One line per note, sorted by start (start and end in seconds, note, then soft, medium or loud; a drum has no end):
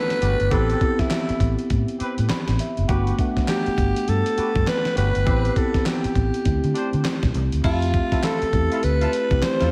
0.00 0.54 A3 medium
0.00 0.52 B3 medium
0.00 0.53 D4 medium
0.00 0.52 E4 medium
0.00 0.54 F#4 medium
0.00 0.54 B4 loud
0.00 0.53 F#5 loud
0.10 snare medium
0.10 closed hi-hat soft
0.21 0.35 G1 loud
0.21 0.37 F#4 medium
0.21 0.37 G4 medium
0.21 0.37 B4 medium
0.21 closed hi-hat medium
0.40 0.49 G1 medium
0.40 closed hi-hat soft
0.51 0.73 A1 loud
0.51 0.80 B3 medium
0.51 0.79 C4 medium
0.51 0.80 C4 medium
0.51 0.80 E4 medium
0.51 0.79 G4 medium
0.51 0.80 G4 medium
0.51 1.02 A4 loud
0.51 0.79 B4 loud
0.51 kick loud
0.51 closed hi-hat medium
0.70 closed hi-hat soft
0.81 1.93 B3 medium
0.81 1.93 C4 medium
0.81 1.94 E4 medium
0.81 1.94 G4 medium
0.81 kick medium
0.81 closed hi-hat medium
0.99 1.59 E4 medium
0.99 muted fingered electric bass stroke soft
0.99 kick medium
0.99 snare medium
0.99 closed hi-hat soft
1.10 snare loud
1.10 clap medium
1.10 closed hi-hat medium
1.29 muted fingered electric bass stroke soft
1.29 closed hi-hat medium
1.40 1.54 A1 medium
1.40 kick medium
1.40 closed hi-hat medium
1.59 closed hi-hat medium
1.70 1.84 A2 loud
1.70 kick medium
1.70 closed hi-hat medium
1.88 closed hi-hat medium
1.99 2.15 C4 medium
1.99 2.15 G4 medium
1.99 2.15 B4 medium
1.99 muted fingered electric bass stroke soft
1.99 closed hi-hat medium
2.18 2.27 A2 loud
2.18 closed hi-hat soft
2.30 2.58 B5 medium
2.30 muted fingered electric bass stroke soft
2.30 snare loud
2.30 clap medium
2.30 closed hi-hat medium
2.48 2.56 A1 medium
2.48 snare medium
2.48 closed hi-hat medium
2.59 2.87 E5 medium
2.59 closed hi-hat medium
2.77 2.86 F#1 medium
2.77 closed hi-hat soft
2.88 3.11 G1 loud
2.88 3.17 A3 medium
2.88 3.17 B3 medium
2.88 3.18 D4 medium
2.88 3.17 F#4 medium
2.88 3.18 F#4 loud
2.88 3.17 G4 medium
2.88 3.17 B4 medium
2.88 kick loud
2.88 closed hi-hat medium
3.07 closed hi-hat soft
3.19 4.31 A3 medium
3.19 4.31 B3 medium
3.19 4.31 D4 medium
3.19 4.32 F#5 loud
3.19 kick medium
3.19 closed hi-hat medium
3.37 muted fingered electric bass stroke soft
3.37 kick medium
3.37 snare medium
3.37 closed hi-hat soft
3.48 4.10 G4 medium
3.48 snare loud
3.48 clap loud
3.48 closed hi-hat medium
3.66 muted fingered electric bass stroke soft
3.66 closed hi-hat medium
3.78 3.91 G1 medium
3.78 kick medium
3.78 closed hi-hat medium
3.96 closed hi-hat medium
4.08 4.21 G2 loud
4.08 4.70 A4 loud
4.08 closed hi-hat medium
4.26 closed hi-hat medium
4.37 4.52 F#4 medium
4.37 4.53 G4 medium
4.37 4.53 B4 medium
4.37 muted fingered electric bass stroke soft
4.37 closed hi-hat medium
4.55 4.64 G2 loud
4.55 kick medium
4.55 closed hi-hat soft
4.67 4.97 B4 loud
4.67 snare loud
4.67 clap medium
4.67 closed hi-hat medium
4.85 snare medium
4.85 closed hi-hat medium
4.96 5.10 G1 loud
4.96 5.12 F#4 medium
4.96 5.12 G4 medium
4.96 5.12 B4 medium
4.96 5.59 B4 loud
4.96 closed hi-hat medium
5.15 5.24 G1 medium
5.15 closed hi-hat soft
5.26 5.48 A1 loud
5.26 5.55 B3 medium
5.26 5.54 C4 medium
5.26 5.55 C4 medium
5.26 5.55 E4 medium
5.26 5.54 G4 medium
5.26 5.55 G4 medium
5.26 5.55 B4 medium
5.26 kick loud
5.26 closed hi-hat medium
5.45 closed hi-hat soft
5.56 6.45 B3 medium
5.56 6.45 C4 medium
5.56 6.45 E4 medium
5.56 6.46 G4 medium
5.56 5.88 A4 medium
5.56 kick medium
5.56 closed hi-hat medium
5.74 muted fingered electric bass stroke soft
5.74 kick medium
5.74 snare medium
5.74 closed hi-hat soft
5.86 7.05 G4 medium
5.86 snare loud
5.86 clap medium
5.86 closed hi-hat medium
6.04 muted fingered electric bass stroke soft
6.04 closed hi-hat medium
6.15 6.29 A1 medium
6.15 kick medium
6.15 closed hi-hat medium
6.34 closed hi-hat medium
6.45 6.59 D2 medium
6.45 7.58 A3 medium
6.45 7.58 C4 medium
6.45 7.58 E4 medium
6.45 7.58 G4 medium
6.45 kick medium
6.45 closed hi-hat medium
6.64 6.72 D3 loud
6.64 closed hi-hat medium
6.75 6.90 D4 medium
6.75 6.90 G4 medium
6.75 6.90 C5 medium
6.75 closed hi-hat medium
6.93 7.02 D3 loud
6.93 closed hi-hat soft
7.05 snare loud
7.05 clap loud
7.05 closed hi-hat medium
7.23 7.32 B1 medium
7.23 kick medium
7.23 snare medium
7.23 closed hi-hat medium
7.34 7.48 C2 loud
7.34 closed hi-hat medium
7.52 7.61 D2 medium
7.52 closed hi-hat soft
7.64 7.99 F2 loud
7.64 8.48 A3 medium
7.64 8.48 C4 medium
7.64 7.79 E4 medium
7.64 7.79 F4 medium
7.64 8.26 F4 medium
7.64 8.49 G4 medium
7.64 7.79 A4 loud
7.64 8.49 E5 medium
7.64 kick loud
7.64 closed hi-hat medium
7.64 crash medium
7.82 closed hi-hat medium
7.94 kick medium
7.94 closed hi-hat medium
8.12 8.22 E4 medium
8.12 8.22 F4 medium
8.12 8.22 A4 medium
8.12 kick medium
8.12 snare medium
8.12 closed hi-hat soft
8.23 8.39 E4 medium
8.23 8.39 F4 medium
8.23 8.39 A4 medium
8.23 8.85 A4 loud
8.23 snare loud
8.23 clap medium
8.23 closed hi-hat medium
8.42 muted fingered electric bass stroke soft
8.42 closed hi-hat medium
8.53 8.67 E2 medium
8.53 9.24 A3 medium
8.53 9.25 C4 medium
8.53 9.25 E4 medium
8.53 9.25 G4 medium
8.53 kick medium
8.53 closed hi-hat medium
8.71 8.81 E4 medium
8.71 8.81 F4 medium
8.71 8.81 A4 medium
8.71 closed hi-hat medium
8.83 9.05 D2 loud
8.83 9.45 B4 loud
8.83 closed hi-hat medium
9.01 9.11 E4 medium
9.01 9.11 F4 medium
9.01 9.11 A4 medium
9.01 closed hi-hat medium
9.13 closed hi-hat medium
9.31 9.40 C2 loud
9.31 9.71 A3 medium
9.31 9.72 C4 medium
9.31 9.72 E4 medium
9.31 9.72 G4 medium
9.31 kick loud
9.31 closed hi-hat soft
9.42 9.72 C5 loud
9.42 muted fingered electric bass stroke soft
9.42 snare loud
9.42 clap loud
9.42 closed hi-hat medium
9.60 9.69 E2 medium
9.60 9.70 E4 medium
9.60 9.70 F4 medium
9.60 9.70 A4 medium
9.60 snare medium
9.60 closed hi-hat medium